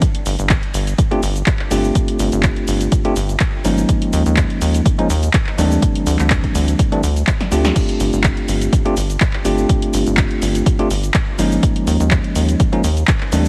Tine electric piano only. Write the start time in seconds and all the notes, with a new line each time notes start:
1.11 A3 C4 D4 F4 G4
1.71 A3 C4 D4 F4 G4
3.05 A3 C4 D4 F4 G4
3.64 F3 G#3 A#3 C#4 D#4
4.98 F3 G#3 A#3 C#4 D#4
5.58 E3 G3 A3 C4 D4
6.92 E3 G3 A3 C4 D4
7.51 A3 C4 D4 F4 G4
8.85 A3 C4 D4 F4 G4
9.45 A3 C4 D4 F4 G4
10.79 A3 C4 D4 F4 G4
11.38 F3 G#3 A#3 C#4 D#4
12.72 F3 G#3 A#3 C#4 D#4
13.32 E3 G3 A3 C4 D4